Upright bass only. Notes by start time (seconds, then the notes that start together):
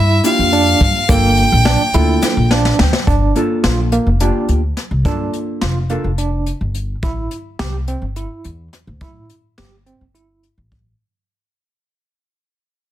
Already playing: G2
0.39 F2
0.81 G2
1.09 G1
1.52 A#1
1.94 D2
2.37 A#1
2.79 D2
3.08 G1
3.64 A#1
4.07 F1
4.48 D2
4.91 C2
5.05 G2
5.62 F1
6.04 F1
6.61 G1
7.03 A1
7.60 C2
8.02 G1
8.45 E2
8.87 D2
9.01 A2
9.58 G1
10.01 G1
10.58 A1